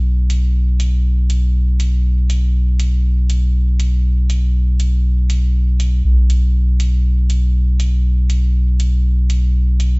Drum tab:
HH |-x-x-x-x|-x-x-x-x|-x-x-x-x|-x-x-x-x|

HH |-x-x-x-x|